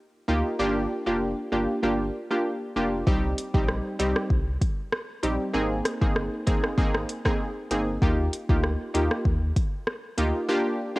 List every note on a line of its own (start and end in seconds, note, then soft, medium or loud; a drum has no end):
0.28 0.43 D2 medium
0.28 0.57 A#3 medium
0.28 0.57 D#4 medium
0.28 0.57 F4 medium
0.28 0.57 G4 medium
0.59 0.86 G1 loud
0.59 1.03 A#3 medium
0.59 1.03 D4 medium
0.59 1.03 F4 medium
0.59 1.03 G4 loud
1.06 1.34 F1 medium
1.06 1.48 A#3 medium
1.06 1.49 D4 medium
1.06 1.49 F4 medium
1.06 1.49 G4 medium
1.52 1.66 G1 loud
1.52 1.81 A#3 medium
1.52 1.81 D4 medium
1.52 1.81 F4 medium
1.52 1.81 G4 medium
1.83 2.10 G1 loud
1.83 1.97 A#3 medium
1.83 1.97 D4 medium
1.83 1.97 F4 medium
1.83 1.98 G4 loud
2.30 2.43 A#3 medium
2.30 2.43 D4 medium
2.30 2.43 F4 medium
2.30 2.43 G4 medium
2.76 3.03 F1 medium
2.76 2.90 A#3 medium
2.76 2.90 D4 medium
2.76 2.90 F4 medium
2.76 2.91 G4 medium
3.07 3.34 C2 loud
3.07 3.21 G3 medium
3.07 3.21 C4 medium
3.07 3.21 D#4 medium
3.07 3.21 G4 loud
3.07 kick loud
3.38 closed hi-hat medium
3.54 3.81 A#1 medium
3.54 3.96 G3 medium
3.54 3.96 C4 medium
3.54 3.96 D#4 medium
3.54 3.96 G4 medium
3.54 kick loud
3.68 cross-stick medium
3.99 4.14 C2 medium
3.99 4.28 G3 medium
3.99 4.28 C4 medium
3.99 4.28 D#4 medium
3.99 4.28 G4 medium
3.99 closed hi-hat medium
4.16 cross-stick medium
4.30 4.57 C2 loud
4.30 kick medium
4.62 kick medium
4.62 closed hi-hat medium
4.92 cross-stick loud
5.23 5.38 A#1 loud
5.23 5.52 G3 medium
5.23 5.52 C4 medium
5.23 5.52 D#4 medium
5.23 5.52 G4 medium
5.23 closed hi-hat medium
5.54 5.81 G#1 loud
5.54 5.97 A#3 medium
5.54 5.97 C4 medium
5.54 5.98 D#4 medium
5.54 5.98 G#4 loud
5.85 cross-stick loud
5.85 closed hi-hat medium
6.01 6.28 G1 medium
6.01 6.43 A#3 medium
6.01 6.43 C4 medium
6.01 6.44 D#4 medium
6.01 6.44 G#4 medium
6.01 kick loud
6.16 cross-stick medium
6.47 6.61 G#1 medium
6.47 6.75 A#3 medium
6.47 6.76 C4 medium
6.47 6.76 D#4 medium
6.47 6.76 G#4 medium
6.47 kick medium
6.47 closed hi-hat medium
6.64 cross-stick medium
6.78 7.05 G#1 loud
6.78 6.92 A#3 medium
6.78 6.92 C4 medium
6.78 6.92 D#4 medium
6.78 6.92 G#4 loud
6.78 kick medium
6.95 cross-stick loud
7.09 closed hi-hat medium
7.25 7.38 A#3 medium
7.25 7.38 C4 medium
7.25 7.38 D#4 medium
7.25 7.38 G#4 medium
7.25 kick medium
7.25 cross-stick loud
7.71 7.97 G1 medium
7.71 7.85 A#3 medium
7.71 7.85 C4 medium
7.71 7.85 D#4 medium
7.71 7.85 G#4 medium
7.71 closed hi-hat medium
8.02 8.29 D#2 loud
8.02 8.16 A#3 medium
8.02 8.16 D#4 medium
8.02 8.16 F4 medium
8.02 8.16 G4 loud
8.02 kick loud
8.33 closed hi-hat medium
8.49 8.76 D2 medium
8.49 8.91 A#3 medium
8.49 8.91 D#4 medium
8.49 8.91 F4 medium
8.49 8.91 G4 medium
8.49 kick loud
8.63 cross-stick medium
8.94 9.09 D#2 medium
8.94 9.23 A#3 medium
8.94 9.23 D#4 medium
8.94 9.23 F4 medium
8.94 9.23 G4 medium
8.94 closed hi-hat medium
9.11 cross-stick medium
9.25 9.52 D#2 medium
9.25 kick medium
9.56 kick loud
9.56 closed hi-hat medium
9.87 cross-stick medium
10.18 10.32 D2 medium
10.18 10.46 A#3 medium
10.18 10.47 D#4 medium
10.18 10.47 F4 medium
10.18 10.47 G4 medium
10.18 closed hi-hat medium
10.49 10.92 A#3 medium
10.49 10.92 D4 medium
10.49 10.92 F4 medium
10.49 10.93 G4 loud
10.96 10.99 A#3 medium
10.96 10.99 D4 medium